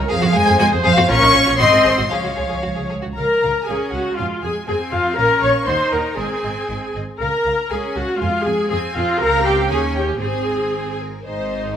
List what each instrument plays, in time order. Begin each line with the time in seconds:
0.09 double bass section F2, cello section F3, violin section G#4 C5 F5, viola section G#4
0.22 double bass section F2, violin section F#4
0.34 double bass section F2, cello section G#3, violin section G#4 G#5
0.47 double bass section F2, violin section G#4
0.59 double bass section F2, cello section G#3, violin section F#4 G#5, viola section C5
0.72 double bass section F2, violin section G#4
0.84 double bass section F2, cello section F3, violin section G#4 F5
0.97 double bass section F2, violin section F#4
1.09 double bass section A#1, cello section C#4, violin section F4 C#5 C#6, viola section A#4
1.22 double bass section A#1, violin section D#4
1.34 double bass section A#1, violin section F4, viola section C#5
1.46 double bass section A#1, violin section F4
1.59 double bass section G#1, cello section C4, violin section F#4 D#5 C6, viola section D#5
1.72 double bass section G#1, violin section G#4
1.85 double bass section G#1, violin section G#4, viola section C5
1.98 double bass section G#1, violin section F#4
2.11 double bass section C#2, cello section F3, violin section G#4 C#5 F5, viola section C#5
2.24 double bass section C#2, violin section F#4
2.37 double bass section C#2, violin section G#4
2.49 double bass section C#2, violin section G#4
2.62 double bass section C#2, violin section F#4
2.76 double bass section C#2, violin section G#4
2.89 double bass section C#2, violin section G#4
3.03 double bass section C#2, violin section F#4
3.16 double bass section C#2, viola section A#4, violin section F5 A#5
3.42 double bass section C#2, violin section F5
3.66 double bass section C#2, cello section C#4, viola section G#4, violin section F5 G#5
3.92 double bass section C#2, viola section F#4, violin section F5 F#5
4.17 double bass section F2, cello section G#3, viola section F4, violin section F5 G#5
4.42 double bass section F2, viola section G#4, violin section G#5
4.67 double bass section F2, cello section C4, viola section G#4, violin section G#5
4.92 double bass section F2, viola section F4, violin section F5 G#5
5.17 double bass section A#1, cello section C#4, viola section A#4, violin section F5 A#5
5.41 double bass section A#1, viola section C#5, violin section F5 C#6
5.66 double bass section D#2, cello section D#4, viola section C5, violin section F#5 C6
5.91 double bass section D#2, viola section A#4, violin section F#5 A#5
6.17 double bass section G#1, cello section C4, viola section G#4, violin section D#5 G#5
6.43 double bass section G#1, violin section D#5
6.69 double bass section G#1, violin section D#5
6.95 double bass section G#1, violin section D#5
7.20 double bass section C#2, viola section A#4, violin section F5 A#5
7.46 double bass section C#2, violin section F5
7.71 double bass section C#2, cello section C#4, viola section G#4, violin section F5 G#5
7.96 double bass section C#2, viola section F#4, violin section F5 F#5
8.20 double bass section F2, cello section G#3, viola section F4, violin section F5 G#5
8.45 double bass section F2, viola section G#4, violin section G#5
8.70 double bass section F2, cello section C4, viola section G#4, violin section G#5
8.96 double bass section F2, viola section F4, violin section F5 G#5
9.20 double bass section C#2, viola section A#4, violin section F5 A#5
9.45 viola section G4, violin section G5
9.69 double bass section D#2, cello section C#4, viola section G#4, violin section C#5 G#5
9.95 viola section G4, violin section G5
10.21 double bass section G#1, cello section C4, viola section G#4, violin section C5 G#5
10.74 violin section C5
10.99 violin section A#4
11.24 double bass section G#1, cello section G#2, viola section D#4, violin section C5